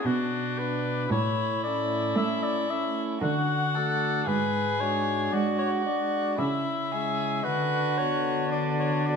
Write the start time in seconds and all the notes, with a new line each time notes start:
0.05 B2 D4 F#4
0.59 B3 D4 B4
1.10 A2 E4 C#5
1.64 A3 C#4 E4 D5
2.16 A3 E5
2.43 D5
2.70 A3 C#4 E4 E5
3.22 D3 F#4 F#5
3.75 A3 D4 F#4 A4
4.27 G#2 G#4 B4
4.79 G#3 D4 F#4 C#5
5.33 G#3 F#4 D5
5.58 C#5
5.86 G#3 D4 F#4 D5
6.39 C#3 E4 E5
6.92 G#3 C#4 E4 G#4
7.44 D3 F#4 B4
7.98 B3 F#4 C#5
8.51 D4 D5
8.79 C#5
9.07 B3 F#4 D5